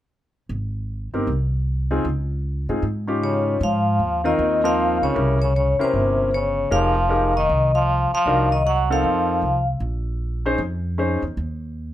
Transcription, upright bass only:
0.49 1.10 G#1 medium
1.14 1.26 G1 medium
1.27 2.01 C2 medium
2.05 2.65 C#2 medium
2.69 2.82 G#2 medium
2.82 3.57 G#2 medium
3.61 3.97 G#2 medium
3.99 4.36 D#2 medium
4.39 4.98 D#2 medium
5.02 5.15 C#2 medium
5.16 5.76 C2 medium
5.80 muted upright bass stroke soft
5.94 6.68 G1 medium
6.71 7.45 F1 medium
7.49 8.09 C2 medium
8.12 muted upright bass stroke soft
8.26 9.00 C2 medium
9.04 9.40 F2 medium
9.42 9.79 C2 medium
9.80 10.55 A#1 medium
10.58 11.19 F2 medium
11.22 11.36 E2 medium
11.37 11.94 D#2 medium

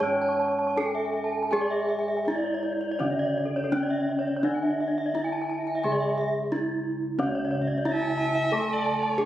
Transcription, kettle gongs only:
0.00 2.22 G#2 medium
0.00 0.73 C#5 soft
0.76 0.84 D4 soft
1.52 3.68 G#4 soft
2.27 2.35 D4 soft
3.00 5.10 D3 soft
3.71 3.79 D4 soft
4.43 5.13 D4 soft
5.14 5.22 D4 soft
5.84 7.82 C#3 soft
6.52 6.60 D4 soft
7.19 9.15 C#4 medium
7.23 9.25 C#2 medium
7.86 7.94 D4 soft
9.20 9.25 D4 soft

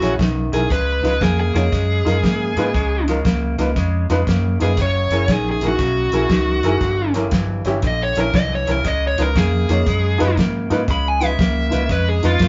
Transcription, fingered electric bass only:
0.03 0.18 A#1 medium
0.19 0.50 B1 medium
0.53 0.69 B1 medium
0.71 1.01 C#2 medium
1.03 1.20 C#2 medium
1.21 1.52 F2 medium
1.54 1.71 F2 medium
1.73 2.03 F#2 medium
2.06 2.22 F#2 medium
2.24 2.54 G#2 medium
2.56 2.73 G#2 medium
2.75 3.22 C#2 medium
3.25 3.55 C#2 medium
3.59 3.75 C#2 medium
3.77 4.07 F2 medium
4.09 4.26 F2 medium
4.27 4.57 F#2 medium
4.61 4.79 F#2 medium
4.78 5.08 F#1 medium
5.11 5.27 F#1 medium
5.29 5.59 A#1 medium
5.61 5.78 A#1 medium
5.79 6.09 B1 medium
6.12 6.29 B1 medium
6.30 6.60 C#2 medium
6.64 6.80 F#1 medium
6.81 7.28 G1 medium
7.32 7.62 G1 medium
7.66 7.82 G1 medium
7.83 8.13 A#1 medium
8.17 8.33 A#1 medium
8.34 8.64 C2 medium
8.69 8.84 C2 medium
8.84 9.15 C#2 medium
9.18 9.34 C#2 medium
9.36 9.66 F2 medium
9.69 9.85 F2 medium
9.87 10.17 F#2 medium
10.21 10.37 F#2 medium
10.37 10.68 G#2 medium
10.70 10.87 G#2 medium
10.88 11.35 C#2 medium
11.39 11.69 C#2 medium
11.73 11.89 C#2 medium
11.89 12.20 F2 medium
12.24 12.40 F2 medium
12.40 12.48 F#2 medium

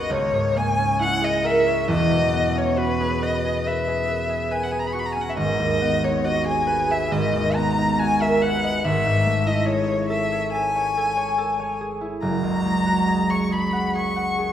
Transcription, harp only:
0.00 0.15 G#1 medium
0.00 0.15 D#2 medium
0.00 0.14 B3 medium
0.00 0.77 C#4 medium
0.00 0.14 F#4 medium
0.00 1.43 A#4 medium
0.00 0.14 B4 medium
0.00 1.65 C#5 medium
0.10 1.92 C#2 medium
0.32 1.92 G#2 medium
0.55 1.92 A#3 medium
0.78 2.54 C#4 medium
1.00 4.90 E4 medium
1.21 2.99 G#4 medium
1.44 1.92 A#4 medium
1.67 5.40 C#5 medium
1.88 5.39 E1 medium
1.88 5.40 E2 medium
2.11 5.40 B2 medium
2.33 5.80 B3 medium
2.55 5.15 C#4 medium
2.77 4.93 F#4 medium
3.00 3.43 G#4 medium
3.22 3.65 B4 medium
3.44 3.86 G#4 medium
3.67 4.07 B4 medium
3.87 4.28 G#4 medium
4.08 4.50 B4 medium
4.29 4.71 G#4 medium
4.51 6.66 B4 medium
4.72 6.44 G#4 medium
4.94 6.23 F#4 medium
5.16 5.41 C#4 medium
5.37 7.10 G#1 medium
5.60 7.15 D#2 medium
5.81 7.54 B3 medium
6.04 7.77 D#4 medium
6.25 7.99 F#4 medium
6.45 6.88 G#4 medium
6.67 8.42 B4 medium
6.89 7.14 G#4 medium
7.11 8.83 G#1 medium
7.33 8.87 D#2 medium
7.55 8.87 B3 medium
7.78 8.88 D#4 medium
8.00 8.88 F#4 medium
8.21 8.88 A#4 medium
8.43 8.88 B4 medium
8.64 8.88 D#5 medium
8.84 12.25 G#1 medium
9.05 12.25 G#2 medium
9.26 12.25 A3 medium
9.46 12.00 E4 medium
9.67 11.80 G#4 medium
9.87 10.31 C#5 medium
10.10 10.53 A4 medium
10.32 10.75 C#5 medium
10.54 10.96 A4 medium
10.76 11.16 C#5 medium
10.97 11.37 A4 medium
11.17 11.58 C#5 medium
11.38 12.25 A4 medium
11.60 13.28 C#5 medium
11.81 13.06 G#4 medium
12.01 12.25 E4 medium
12.22 14.53 F#1 medium
12.43 14.53 C#2 soft
12.65 14.53 G#3 medium
12.86 14.53 F#4 medium
13.07 13.50 G#4 medium
13.29 14.53 C#5 medium
13.51 13.94 G#4 medium
13.73 14.15 F#5 medium
13.95 14.37 G#4 medium
14.16 14.53 F#5 medium
14.38 14.53 G#4 medium

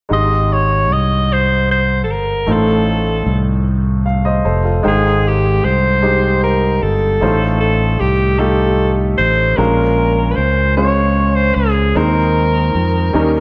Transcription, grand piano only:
0.09 1.25 G#2 soft
0.09 2.43 G#3 soft
0.09 2.43 D#4 soft
0.09 2.44 G4 soft
0.09 2.45 C6 soft
2.46 3.63 A2 soft
2.46 4.80 A3 soft
2.46 4.81 D#4 soft
2.46 4.03 F4 soft
2.46 4.04 C5 soft
4.06 4.25 F5 soft
4.25 4.43 C5 soft
4.25 4.44 D#5 soft
4.45 4.62 A4 soft
4.45 4.64 C5 soft
4.64 5.02 F4 soft
4.64 5.02 A4 soft
4.83 5.99 G#2 soft
4.83 5.73 G#3 medium
4.83 5.74 D#4 medium
4.83 5.74 C5 medium
4.83 5.74 G5 soft
6.02 6.92 G#3 medium
6.02 6.93 D#4 soft
6.02 6.93 G4 soft
6.02 6.93 C5 medium
7.21 8.36 A2 soft
7.21 7.28 G3 soft
7.21 8.11 D#4 medium
7.21 8.11 F4 soft
7.21 8.12 C5 medium
7.27 8.14 A3 medium
8.38 9.29 A3 medium
8.38 9.29 D#4 soft
8.38 9.29 F4 soft
8.38 9.30 G4 medium
9.57 10.73 A#2 soft
9.57 10.48 G#3 medium
9.57 10.48 C#4 soft
9.57 10.48 F4 soft
9.57 10.48 A#4 medium
10.77 11.67 G#3 medium
10.77 11.67 C#4 soft
10.77 11.67 F4 soft
10.77 10.84 C5 soft
10.84 11.70 C#5 medium
11.95 13.10 D#3 soft
11.95 12.85 G#3 medium
11.95 12.85 C4 medium
11.95 12.86 D#4 soft
11.95 12.86 C5 medium
13.13 13.40 D#3 medium
13.13 13.40 G3 medium
13.13 13.40 C#4 soft
13.13 13.40 D#4 medium
13.13 13.40 A#4 medium

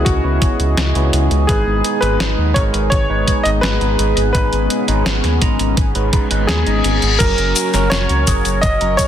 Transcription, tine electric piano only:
0.24 0.91 B3 medium
0.24 0.91 E4 medium
0.24 0.91 C#5 medium
0.95 1.45 B3 medium
0.95 1.45 E4 medium
0.95 1.45 C#5 medium
1.49 1.98 G#3 medium
1.49 1.98 D#4 medium
1.49 1.98 B4 loud
2.03 2.52 G#3 medium
2.03 2.52 D#4 medium
2.03 2.52 B4 loud
2.56 2.89 G#3 medium
2.56 2.89 D#4 medium
2.56 2.89 A#4 loud
3.10 3.77 G#3 medium
3.10 3.77 D#4 medium
3.10 3.77 B4 medium
3.81 4.30 G#3 medium
3.81 4.30 D#4 medium
3.81 4.30 B4 medium
4.35 4.84 G#3 medium
4.35 4.84 D#4 medium
4.35 4.84 B4 loud
4.88 5.38 G#3 medium
4.88 5.38 D#4 medium
4.88 5.38 B4 loud
5.42 5.75 G#3 medium
5.42 5.75 D#4 medium
5.42 5.75 A#5 loud
5.95 6.10 G#3 medium
5.95 6.10 D#4 medium
5.95 6.10 B4 medium
6.13 6.27 G#3 medium
6.13 6.27 D#4 medium
6.13 6.27 B4 medium
6.31 6.63 G#3 medium
6.31 6.63 D#4 medium
6.31 6.63 B4 loud
6.67 7.00 G#3 medium
6.67 7.00 D#4 medium
6.67 7.00 D#5 medium
7.20 7.70 F#3 medium
7.20 7.70 C#4 medium
7.20 7.70 A#4 medium
7.74 8.23 F#3 medium
7.74 8.23 C#4 medium
7.74 8.23 A#4 loud
8.28 8.61 F#3 medium
8.28 8.61 C#4 medium
8.28 8.61 G#4 loud
8.81 9.08 F#3 medium
8.81 9.08 C#4 medium
8.81 9.08 A#4 medium

